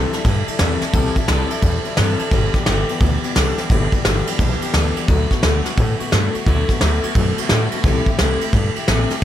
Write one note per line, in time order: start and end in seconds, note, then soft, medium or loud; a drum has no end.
0.00 0.13 C3 medium
0.00 0.14 E3 medium
0.00 0.14 G3 medium
0.00 0.14 E4 loud
0.00 0.12 A4 loud
0.13 0.25 G3 medium
0.13 0.26 E4 medium
0.13 0.25 A4 medium
0.13 muted upright bass stroke medium
0.13 snare soft
0.13 ride medium
0.25 0.43 G2 medium
0.25 0.47 E3 medium
0.25 0.48 G3 medium
0.25 0.48 E4 medium
0.25 0.47 A4 medium
0.25 kick loud
0.25 snare soft
0.25 ride medium
0.48 0.59 G3 soft
0.48 0.60 E4 medium
0.48 0.60 A4 medium
0.48 muted upright bass stroke medium
0.48 ride medium
0.59 0.78 E2 loud
0.59 0.82 C3 loud
0.59 0.82 E3 medium
0.59 0.83 G3 loud
0.59 0.82 E4 loud
0.59 0.81 A4 loud
0.59 snare loud
0.59 ride medium
0.81 0.93 G3 soft
0.81 0.94 E4 medium
0.81 0.94 A4 medium
0.81 muted upright bass stroke medium
0.81 snare soft
0.81 ride medium
0.93 1.12 C2 loud
0.93 1.16 C3 medium
0.93 1.16 E3 medium
0.93 1.16 G3 medium
0.93 1.16 E4 medium
0.93 1.15 A4 loud
0.93 kick loud
0.93 ride medium
1.16 1.28 G3 medium
1.16 1.29 E4 medium
1.16 1.29 A4 medium
1.16 kick medium
1.16 ride medium
1.28 1.47 C2 medium
1.28 1.51 C3 medium
1.28 1.51 E3 medium
1.28 1.51 G3 loud
1.28 1.51 E4 loud
1.28 1.49 A4 loud
1.28 snare loud
1.28 ride medium
1.50 1.62 G3 medium
1.50 1.63 E4 medium
1.50 1.63 A4 medium
1.50 muted upright bass stroke medium
1.50 ride medium
1.62 1.81 E2 medium
1.62 1.85 E3 medium
1.62 1.86 G3 medium
1.62 1.85 E4 medium
1.62 1.84 A4 medium
1.62 kick loud
1.62 ride medium
1.85 1.97 G3 medium
1.85 1.97 E4 medium
1.85 1.97 A4 medium
1.85 muted upright bass stroke medium
1.85 ride medium
1.97 2.16 G2 loud
1.97 2.20 C3 medium
1.97 2.20 E3 medium
1.97 2.20 G3 medium
1.97 2.20 E4 loud
1.97 2.18 A4 loud
1.97 snare loud
1.97 ride medium
2.19 2.32 G3 soft
2.19 2.33 E4 medium
2.19 2.32 A4 medium
2.19 muted upright bass stroke medium
2.19 ride medium
2.31 2.50 G1 loud
2.31 2.55 G2 medium
2.31 2.55 D3 medium
2.31 2.55 E3 medium
2.31 2.55 G3 medium
2.31 2.54 B3 medium
2.31 2.53 G4 loud
2.31 kick loud
2.31 ride medium
2.54 2.66 E3 soft
2.54 2.67 G3 medium
2.54 2.67 B3 medium
2.54 2.67 G4 medium
2.54 kick medium
2.54 snare soft
2.54 ride medium
2.66 2.85 G1 medium
2.66 2.89 G2 loud
2.66 2.89 D3 loud
2.66 2.90 E3 loud
2.66 2.90 G3 medium
2.66 2.89 B3 loud
2.66 2.88 G4 loud
2.66 snare loud
2.66 ride medium
2.89 3.00 E3 medium
2.89 3.01 G3 medium
2.89 3.01 B3 medium
2.89 3.01 G4 medium
2.89 ride medium
3.01 3.19 D2 loud
3.01 3.23 E3 medium
3.01 3.24 G3 medium
3.01 3.24 B3 medium
3.01 3.23 G4 medium
3.01 kick loud
3.01 ride medium
3.24 3.34 E3 medium
3.24 3.35 G3 medium
3.24 3.35 B3 medium
3.24 3.36 G4 medium
3.24 muted upright bass stroke medium
3.24 ride medium
3.35 3.54 C2 loud
3.35 3.58 G2 loud
3.35 3.58 D3 medium
3.35 3.58 E3 loud
3.35 3.58 G3 loud
3.35 3.58 B3 loud
3.35 3.57 G4 loud
3.35 snare loud
3.35 ride medium
3.58 3.70 E3 soft
3.58 3.70 G3 medium
3.58 3.70 B3 medium
3.58 3.70 G4 medium
3.58 muted upright bass stroke medium
3.58 snare soft
3.58 ride medium
3.70 3.88 G1 loud
3.70 3.93 G2 medium
3.70 3.93 D3 medium
3.70 3.93 E3 medium
3.70 3.93 G3 medium
3.70 3.92 B3 medium
3.70 3.92 G4 loud
3.70 kick loud
3.70 ride medium
3.92 4.05 E3 medium
3.92 4.06 G3 medium
3.92 4.05 B3 medium
3.92 4.05 G4 medium
3.92 muted upright bass stroke medium
3.92 kick medium
3.92 ride medium
4.05 4.23 G1 medium
4.05 4.27 G2 medium
4.05 4.28 D3 medium
4.05 4.28 E3 loud
4.05 4.28 G3 loud
4.05 4.28 B3 medium
4.05 4.28 G4 loud
4.05 snare loud
4.05 ride medium
4.27 4.39 E3 soft
4.27 4.40 G3 medium
4.27 4.40 B3 medium
4.27 4.40 G4 medium
4.27 ride medium
4.39 4.57 B1 loud
4.39 4.62 E3 medium
4.39 4.62 G3 medium
4.39 4.62 B3 medium
4.39 4.61 G4 medium
4.39 kick loud
4.39 ride medium
4.62 4.73 E3 soft
4.62 4.73 G3 medium
4.62 4.74 B3 medium
4.62 4.74 G4 medium
4.62 muted upright bass stroke medium
4.62 ride medium
4.73 4.92 D2 medium
4.73 4.96 G2 loud
4.73 4.96 D3 medium
4.73 4.96 E3 loud
4.73 4.97 G3 medium
4.73 4.96 B3 loud
4.73 4.96 G4 medium
4.73 snare loud
4.73 ride medium
4.96 5.09 E3 soft
4.96 5.09 G3 medium
4.96 5.09 B3 medium
4.96 5.09 G4 medium
4.96 ride medium
5.08 5.26 D2 loud
5.08 5.31 D3 loud
5.08 5.31 F#3 medium
5.08 5.31 A3 medium
5.08 5.31 B3 loud
5.08 5.30 F#4 loud
5.08 kick loud
5.08 ride medium
5.31 5.42 A3 soft
5.31 5.43 B3 medium
5.31 5.43 F#4 medium
5.31 kick medium
5.31 snare soft
5.31 ride medium
5.42 5.61 D2 medium
5.42 5.65 D3 medium
5.42 5.65 F#3 loud
5.42 5.66 A3 medium
5.42 5.65 B3 medium
5.42 5.64 F#4 medium
5.42 snare loud
5.42 ride medium
5.65 5.77 A3 soft
5.65 5.78 B3 medium
5.65 5.77 F#4 medium
5.65 snare soft
5.65 ride medium
5.77 5.96 A2 loud
5.77 6.00 F#3 medium
5.77 6.00 A3 medium
5.77 6.00 B3 medium
5.77 5.99 F#4 medium
5.77 kick loud
5.77 ride medium
6.00 6.11 A3 medium
6.00 6.11 B3 medium
6.00 6.12 F#4 medium
6.00 muted upright bass stroke medium
6.00 ride medium
6.12 6.30 G2 medium
6.12 6.34 D3 medium
6.12 6.34 F#3 medium
6.12 6.35 A3 loud
6.12 6.35 B3 medium
6.12 6.34 F#4 medium
6.12 snare loud
6.12 ride medium
6.34 6.47 A3 soft
6.34 6.47 B3 medium
6.34 6.47 F#4 medium
6.34 muted upright bass stroke medium
6.34 ride medium
6.46 6.65 D2 loud
6.46 6.69 D3 medium
6.46 6.69 F#3 medium
6.46 6.70 A3 medium
6.46 6.70 B3 loud
6.46 6.69 F#4 medium
6.46 kick loud
6.46 ride medium
6.69 6.81 A3 medium
6.69 6.81 B3 medium
6.69 6.82 F#4 medium
6.69 kick medium
6.69 snare soft
6.69 ride medium
6.81 7.00 D2 medium
6.81 7.04 D3 medium
6.81 7.04 F#3 medium
6.81 7.04 A3 loud
6.81 7.04 B3 loud
6.81 7.02 F#4 loud
6.81 snare loud
6.81 ride medium
7.03 7.15 A3 medium
7.03 7.16 B3 medium
7.03 7.16 F#4 medium
7.03 muted upright bass stroke medium
7.03 ride medium
7.15 7.33 F#2 medium
7.15 7.38 F#3 medium
7.15 7.38 A3 medium
7.15 7.39 B3 medium
7.15 7.37 F#4 medium
7.15 kick loud
7.15 ride medium
7.38 7.50 A3 medium
7.38 7.50 B3 medium
7.38 7.50 F#4 medium
7.38 muted upright bass stroke medium
7.38 ride medium
7.49 7.69 A2 loud
7.49 7.73 D3 medium
7.49 7.73 F#3 medium
7.49 7.73 A3 medium
7.49 7.73 B3 loud
7.49 7.72 F#4 loud
7.49 snare loud
7.71 7.86 B3 medium
7.71 7.85 F#4 medium
7.71 muted upright bass stroke medium
7.71 ride medium
7.76 7.85 A3 medium
7.84 8.02 C2 medium
7.84 8.08 C3 medium
7.84 8.08 E3 medium
7.84 8.08 A3 loud
7.84 8.08 E4 loud
7.84 kick loud
7.84 ride medium
7.88 8.07 G4 loud
8.06 8.20 E4 medium
8.06 8.19 G4 medium
8.06 kick medium
8.06 ride medium
8.11 8.20 A3 medium
8.19 8.38 C2 medium
8.19 8.42 C3 medium
8.19 8.42 E3 loud
8.19 8.42 A3 medium
8.19 8.42 E4 loud
8.19 8.41 G4 loud
8.19 snare loud
8.19 ride medium
8.41 8.54 A3 medium
8.41 8.55 E4 medium
8.41 8.54 G4 medium
8.41 muted upright bass stroke medium
8.41 ride medium
8.53 8.71 G2 loud
8.53 8.76 E3 medium
8.53 8.77 A3 medium
8.53 8.77 E4 medium
8.53 8.75 G4 medium
8.53 kick loud
8.53 snare soft
8.53 ride medium
8.76 8.88 A3 medium
8.76 8.89 E4 medium
8.76 8.88 G4 medium
8.76 muted upright bass stroke medium
8.76 ride medium
8.88 9.06 A1 loud
8.88 9.11 C3 medium
8.88 9.11 E3 medium
8.88 9.11 A3 medium
8.88 9.10 E4 loud
8.88 9.10 G4 loud
8.88 snare loud
8.88 ride medium
9.10 9.23 A3 medium
9.10 9.23 E4 medium
9.10 9.23 G4 medium
9.10 muted upright bass stroke medium
9.10 snare soft
9.10 ride medium